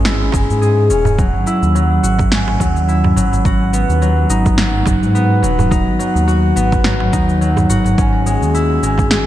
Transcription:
Already playing: analog synth bass G#1, harp G#3 B3 C#4 D#4 G#4
0.05 harp E4, snare, cabasa
0.21 darbuka ka
0.32 analog synth bass F#1, harp G#3, kick, darbuka tek, darbuka dum, cabasa
0.49 analog synth bass G#2, cabasa
0.61 harp G#4, cabasa
0.90 analog synth bass D#1, harp C#4, darbuka tek, cabasa
1.05 darbuka dum, cabasa
1.18 harp F#3, kick, cabasa
1.34 analog synth bass G#1
1.46 harp E4, darbuka ka, cabasa
1.63 analog synth bass D#2, cabasa
1.75 harp F#3, cabasa
2.03 analog synth bass G#1, harp F#4, cabasa
2.19 kick, darbuka tek, darbuka dum, cabasa
2.32 harp C#4, snare, cabasa
2.48 darbuka tek
2.60 analog synth bass D#2, harp F#3, kick, cabasa
2.76 cabasa
2.88 harp E4, cabasa
3.04 darbuka ka, darbuka tek, darbuka dum
3.16 analog synth bass G#1, harp F#3, cabasa
3.33 analog synth bass G#1, darbuka ka, cabasa
3.45 analog synth bass G#1, harp F#4, kick, cabasa
3.73 harp B3, darbuka ka, cabasa
3.89 analog synth bass D#2, cabasa
4.02 harp F#3, cabasa
4.30 analog synth bass G#1, harp D#4, cabasa
4.46 kick, darbuka tek, darbuka dum, cabasa
4.58 harp F#3, snare, cabasa
4.74 darbuka ka
4.86 analog synth bass F#1, harp F#4, kick, darbuka tek, darbuka dum, cabasa
5.02 analog synth bass G#2, cabasa
5.15 harp B3, cabasa
5.42 analog synth bass D#1, harp F#3, darbuka tek, cabasa
5.59 darbuka dum, cabasa
5.71 harp D#4, kick, cabasa
5.87 analog synth bass G#1
5.99 harp F#3, darbuka ka, cabasa
6.16 analog synth bass D#2, cabasa
6.28 harp F#4, cabasa
6.56 analog synth bass G#1, harp B3, cabasa
6.72 kick, darbuka ka, darbuka tek, darbuka dum, cabasa
6.84 harp F#3, snare, cabasa
7.00 darbuka tek
7.13 analog synth bass D#2, harp D#4, kick, cabasa
7.29 cabasa
7.41 harp F#3, cabasa
7.57 darbuka ka, darbuka tek, darbuka dum, cabasa
7.69 analog synth bass G#1, harp F#4, cabasa
7.85 analog synth bass G#1, darbuka ka, cabasa
7.98 analog synth bass G#1, harp C#4, kick, cabasa
8.26 harp G#3, darbuka ka, cabasa
8.42 analog synth bass D#2, cabasa
8.54 harp E4, cabasa
8.83 analog synth bass G#1, harp G#3, cabasa
8.98 kick, darbuka tek, darbuka dum, cabasa
9.11 harp G#4, snare, cabasa

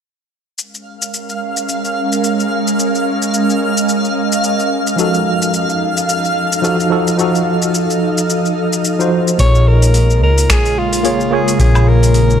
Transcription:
0.58 ambient pad G#3 C#4 A#4 F5, synth texture F5, shaker
0.74 shaker
1.02 shaker
1.14 shaker
1.29 shaker
1.57 shaker
1.69 shaker
1.85 shaker
2.12 shaker
2.24 shaker
2.40 shaker
2.68 shaker
2.79 ambient pad D#5, shaker
2.95 shaker
3.22 shaker
3.34 shaker
3.50 shaker
3.77 shaker
3.89 shaker
4.05 shaker
4.32 shaker
4.44 shaker
4.60 shaker
4.87 shaker
4.96 tine electric piano F3 D#4 F#4, ambient pad D#4 A4 F5, shaker
5.00 tine electric piano A4
5.14 shaker
5.42 shaker
5.54 shaker
5.69 shaker
5.97 shaker
6.09 shaker
6.25 shaker
6.52 shaker
6.62 tine electric piano F3 D#4 F#4 A4, shaker
6.80 shaker
6.90 tine electric piano F3 D#4 F#4 A4
7.07 shaker
7.16 tine electric piano F3 D#4 F#4, ambient pad D#5, shaker
7.21 tine electric piano A4
7.35 shaker
7.62 shaker
7.74 shaker
7.90 shaker
8.18 shaker
8.30 shaker
8.45 shaker
8.73 shaker
8.85 shaker
8.99 tine electric piano F3 D#4 F#4 C5, shaker
9.28 shaker
9.37 fingered electric bass A#1, ambient pad C#3 G#3 A#3 F4, tine electric piano A#3 F4 G#4, soprano saxophone C#5, kick, open hi-hat, shaker
9.42 tine electric piano C#5
9.55 shaker
9.68 soprano saxophone A#4
9.82 open hi-hat, shaker
9.94 open hi-hat, shaker
10.10 shaker
10.22 fingered electric bass C#2, soprano saxophone A#4
10.38 open hi-hat, shaker
10.50 fingered electric bass A#1, soprano saxophone G#4, finger snap, kick, open hi-hat, shaker
10.65 open hi-hat, shaker
10.78 soprano saxophone F4
10.93 open hi-hat, shaker
11.03 tine electric piano A#3 F4 G#4 C#5, open hi-hat, shaker
11.21 shaker
11.31 tine electric piano A#3 F4 G#4 C#5, soprano saxophone G#4
11.48 open hi-hat, shaker
11.57 fingered electric bass A#1, tine electric piano A#3 F4 G#4, ambient pad D#4, soprano saxophone G#4, kick, open hi-hat, shaker
11.62 tine electric piano C#5
11.75 low woodblock, shaker
11.88 soprano saxophone A#4
12.03 open hi-hat, shaker
12.14 open hi-hat, shaker
12.30 shaker

